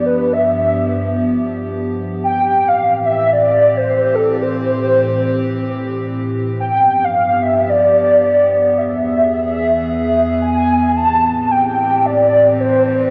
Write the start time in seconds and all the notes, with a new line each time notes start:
Already playing: G2 F3 B3 G4
0.06 B4
0.33 E5
2.24 A2 E3 C4 G4 G5
2.68 F5
3.06 E5
3.33 D5
3.77 C5
4.15 A4
4.42 C5
6.60 G2 F3 B3 G4 G5
7.04 F5
7.42 E5
7.69 D5
8.78 E2 E3 G#4 E5
10.42 G#5
10.96 A2 E3 C4 G4 A5
11.51 G5
12.06 D5
12.60 C5